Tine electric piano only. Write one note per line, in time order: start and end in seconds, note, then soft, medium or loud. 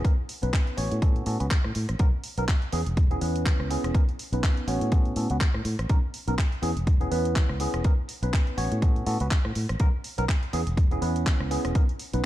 0.04 0.12 B3 medium
0.04 0.12 C#4 medium
0.04 0.12 D#4 medium
0.04 0.12 A#4 medium
0.42 0.75 B3 medium
0.42 0.75 C#4 medium
0.42 0.75 D#4 medium
0.42 0.75 B4 medium
0.77 0.99 B3 medium
0.77 0.99 C#4 medium
0.77 1.00 F#4 medium
0.77 1.00 C#5 loud
1.02 1.24 B3 medium
1.02 1.24 C#4 medium
1.02 1.24 F#4 medium
1.02 1.24 A4 medium
1.26 1.37 B3 medium
1.26 1.37 C#4 medium
1.26 1.37 F#4 medium
1.26 1.37 A4 medium
1.40 1.46 B3 medium
1.40 1.46 C#4 medium
1.40 1.46 F#4 medium
1.40 1.46 B4 medium
1.99 2.07 B3 medium
1.99 2.07 C#4 medium
1.99 2.07 D#4 medium
1.99 2.07 A#4 loud
2.38 2.44 B3 medium
2.38 2.44 C#4 medium
2.38 2.44 D#4 medium
2.38 2.44 A#4 medium
2.72 2.80 B3 medium
2.72 2.80 C#4 medium
2.72 2.80 E4 medium
2.72 2.81 G#4 loud
3.11 3.19 B3 medium
3.11 3.19 C#4 medium
3.11 3.19 E4 medium
3.11 3.19 G#4 loud
3.21 3.68 B3 medium
3.21 3.68 C#4 medium
3.21 3.68 E4 medium
3.21 3.68 B4 medium
3.70 3.92 B3 medium
3.70 3.92 C#4 medium
3.70 3.92 E4 medium
3.70 3.92 G#4 medium
3.94 4.02 B3 medium
3.94 4.02 C#4 medium
3.94 4.02 D#4 medium
3.94 4.03 A#4 medium
4.33 4.65 B3 medium
4.33 4.65 C#4 medium
4.33 4.65 D#4 medium
4.33 4.66 B4 medium
4.68 4.90 B3 medium
4.68 4.90 C#4 medium
4.68 4.90 F#4 medium
4.68 4.90 C#5 loud
4.92 5.14 B3 medium
4.92 5.14 C#4 medium
4.92 5.14 F#4 medium
4.92 5.14 A4 medium
5.16 5.27 B3 medium
5.16 5.27 C#4 medium
5.16 5.27 F#4 medium
5.16 5.27 A4 medium
5.30 5.36 B3 medium
5.30 5.36 C#4 medium
5.30 5.37 F#4 medium
5.30 5.37 B4 medium
5.89 5.97 B3 medium
5.89 5.97 C#4 medium
5.89 5.97 D#4 medium
5.89 5.98 A#4 loud
6.27 6.34 B3 medium
6.27 6.34 C#4 medium
6.27 6.34 D#4 medium
6.27 6.34 A#4 medium
6.62 6.70 B3 loud
6.62 6.70 C#4 medium
6.62 6.71 E4 medium
6.62 6.71 G#4 loud
7.01 7.09 B3 medium
7.01 7.09 C#4 medium
7.01 7.09 E4 medium
7.01 7.09 G#4 loud
7.11 7.58 B3 medium
7.11 7.58 C#4 medium
7.11 7.58 E4 medium
7.11 7.58 B4 medium
7.60 7.82 B3 medium
7.60 7.82 C#4 medium
7.60 7.82 E4 medium
7.60 7.82 G#4 medium
7.84 7.92 B3 medium
7.84 7.92 C#4 medium
7.84 7.93 D#4 medium
7.84 7.93 A#4 medium
8.22 8.55 B3 medium
8.22 8.55 C#4 medium
8.22 8.56 D#4 medium
8.22 8.56 B4 medium
8.57 8.80 B3 medium
8.57 8.80 C#4 medium
8.57 8.80 F#4 medium
8.57 8.80 C#5 loud
8.82 9.04 B3 medium
8.82 9.04 C#4 medium
8.82 9.04 F#4 medium
8.82 9.05 A4 medium
9.06 9.17 B3 medium
9.06 9.17 C#4 medium
9.06 9.17 F#4 medium
9.06 9.18 A4 medium
9.20 9.26 B3 medium
9.20 9.26 C#4 medium
9.20 9.27 F#4 medium
9.20 9.27 B4 medium
9.80 9.88 B3 medium
9.80 9.88 C#4 medium
9.80 9.88 D#4 medium
9.80 9.88 A#4 loud
10.18 10.24 B3 medium
10.18 10.24 C#4 medium
10.18 10.24 D#4 medium
10.18 10.24 A#4 medium
10.53 10.61 B3 loud
10.53 10.61 C#4 medium
10.53 10.61 E4 medium
10.53 10.61 G#4 loud
10.91 10.99 B3 medium
10.91 11.00 C#4 medium
10.91 11.00 E4 medium
10.91 11.00 G#4 loud
11.01 11.48 B3 medium
11.01 11.48 C#4 medium
11.01 11.48 E4 medium
11.01 11.48 B4 medium
11.50 11.72 B3 medium
11.50 11.73 C#4 medium
11.50 11.73 E4 medium
11.50 11.73 G#4 medium
11.75 11.83 B3 medium
11.75 11.83 C#4 medium
11.75 11.83 D#4 medium
11.75 11.83 A#4 medium
12.13 12.26 B3 medium
12.13 12.26 C#4 medium
12.13 12.26 D#4 medium
12.13 12.26 B4 medium